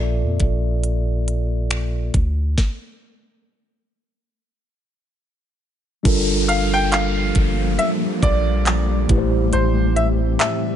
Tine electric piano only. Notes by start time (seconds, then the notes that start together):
Already playing: A#2 A#3 F4 A4 D5 E5
6.03 G3 D4 F4 A4 A#4
9.08 A2 A3 E4 G4 B4
9.18 C5